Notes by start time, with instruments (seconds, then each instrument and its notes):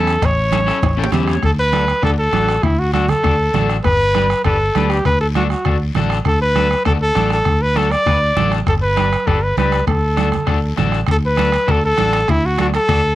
Already playing: fingered electric bass E2, clean electric guitar C#4 E4 A4, trumpet A4
0.07 bombo rim, short guiro
0.22 fingered electric bass A1, trumpet C#5, bombo low, bombo rim, cowbell, high conga, long guiro
0.52 clean electric guitar C#4 E4 A4, bombo rim, cowbell, high conga, short guiro
0.66 clean electric guitar C#4 E4 A4, bombo rim, short guiro
0.82 fingered electric bass A1, bombo low, bombo rim, cowbell, high conga, high timbale, long guiro
0.97 clean electric guitar C#4 E4 A4 G5
1.04 low timbale
1.12 fingered electric bass E2, clean electric guitar C#4 E4 G4 E5, bombo rim, cowbell, high conga, low conga, low timbale, short guiro
1.23 low timbale
1.28 clean electric guitar C#5, bombo rim, short guiro
1.33 low timbale
1.43 fingered electric bass D2, trumpet A4, bombo low, bombo rim, high conga, long guiro
1.59 trumpet B4
1.72 clean electric guitar D4 F#4 A4, bombo rim, high conga, short guiro
1.88 bombo rim, short guiro
2.02 fingered electric bass D2, clean electric guitar D4 F#4 A4, trumpet A4, bombo low, bombo rim, high conga, long guiro
2.19 trumpet A4
2.33 fingered electric bass A1, clean electric guitar D4 F#4 A4, bombo rim, high conga, short guiro
2.48 bombo rim, short guiro
2.63 fingered electric bass D2, trumpet E4, bombo low, bombo rim, high conga, long guiro
2.79 trumpet F#4
2.93 clean electric guitar D4 F#4 A4, trumpet F#4, bombo rim, high conga, short guiro
3.09 trumpet A4, bombo rim, low conga, short guiro
3.23 fingered electric bass D2, clean electric guitar D4 F#4 A4, bombo low, bombo rim, high conga, long guiro
3.54 fingered electric bass A1, clean electric guitar D4 F#4 A4, bombo rim, high conga, low conga, short guiro
3.69 bombo rim, short guiro
3.84 fingered electric bass G1, trumpet B4, bombo low, bombo rim, high conga, long guiro
4.15 clean electric guitar D4 G4 B4, bombo rim, high conga, short guiro
4.30 bombo rim, short guiro
4.44 fingered electric bass G1, clean electric guitar D4 G4 B4, trumpet A4, bombo low, bombo rim, high conga, long guiro
4.75 fingered electric bass D2, clean electric guitar D4 G4 B4, bombo rim, high conga, short guiro
4.90 trumpet G4, bombo rim, short guiro
5.05 fingered electric bass D2, trumpet B4, bombo low, bombo rim, high conga, long guiro
5.21 trumpet A4
5.35 clean electric guitar D4 F#4 A4, trumpet F#4, bombo rim, high conga, short guiro
5.50 trumpet F#4, bombo rim, short guiro
5.65 fingered electric bass D2, clean electric guitar D4 F#4 A4, bombo low, bombo rim, high conga, long guiro
5.95 fingered electric bass A1, clean electric guitar D4 F#4 A4, bombo rim, high conga, low conga, short guiro
6.10 bombo rim, short guiro
6.25 fingered electric bass D2, trumpet A4, bombo low, bombo rim, high conga, long guiro
6.42 trumpet B4
6.55 clean electric guitar D4 F#4 A4, bombo rim, high conga, short guiro
6.71 bombo rim, short guiro
6.85 fingered electric bass D2, clean electric guitar D4 F#4 A4, trumpet A4, bombo low, bombo rim, high conga, long guiro
7.02 trumpet A4
7.15 fingered electric bass A1, clean electric guitar D4 F#4 A4, bombo rim, high conga, short guiro
7.30 trumpet A4, bombo rim, short guiro
7.45 fingered electric bass D2, bombo low, bombo rim, high conga, long guiro
7.62 trumpet B4
7.75 clean electric guitar D4 F#4 A4, trumpet A4, bombo rim, high conga, short guiro
7.91 trumpet D5, bombo rim, short guiro
8.06 fingered electric bass D2, clean electric guitar D4 F#4 B4, bombo low, bombo rim, high conga, long guiro
8.36 fingered electric bass A1, clean electric guitar D4 F#4 A4, bombo rim, high conga, low conga, short guiro
8.52 bombo rim, short guiro
8.66 fingered electric bass G1, trumpet A4, bombo low, bombo rim, high conga, long guiro
8.82 trumpet B4
8.96 clean electric guitar D4 G4 B4, bombo rim, high conga, short guiro
9.12 bombo rim, short guiro
9.27 fingered electric bass G1, clean electric guitar D4 G4 B4, trumpet A4, bombo low, bombo rim, high conga, long guiro
9.43 trumpet B4
9.57 fingered electric bass C#2, clean electric guitar D4 G4 B4, trumpet B4, bombo rim, high conga, short guiro
9.72 bombo rim, short guiro
9.87 fingered electric bass D2, trumpet A4, bombo low, bombo rim, high conga, long guiro
10.17 clean electric guitar D4 F#4 A4, bombo rim, high conga, short guiro
10.32 bombo rim, low conga, short guiro
10.47 fingered electric bass D2, clean electric guitar D4 F#4 A4, bombo low, bombo rim, high conga, long guiro
10.78 fingered electric bass A1, clean electric guitar D4 F#4 A4, bombo rim, high conga, low conga, short guiro
10.92 bombo rim, short guiro
11.07 fingered electric bass D2, bombo low, bombo rim, high conga, high timbale, long guiro
11.12 trumpet A4
11.26 trumpet B4
11.37 clean electric guitar D4 F#4 A4, bombo rim, high conga, high timbale, short guiro
11.52 bombo rim, high timbale, short guiro
11.67 fingered electric bass D2, clean electric guitar D4 F#4 A4, trumpet A4, bombo low, bombo rim, high conga, high timbale, long guiro
11.85 trumpet A4
11.98 fingered electric bass A1, clean electric guitar D4 F#4 A4, bombo rim, high conga, high timbale, short guiro
12.13 bombo rim, high timbale, short guiro
12.28 fingered electric bass D2, trumpet E4, bombo low, bombo rim, high conga, high timbale, long guiro
12.46 trumpet F#4
12.58 clean electric guitar D4 F#4 A4, trumpet F#4, bombo rim, high conga, high timbale, short guiro
12.74 trumpet A4, bombo rim, high timbale, short guiro
12.89 fingered electric bass D2, clean electric guitar D4 F#4 A4, bombo low, bombo rim, high conga, high timbale, long guiro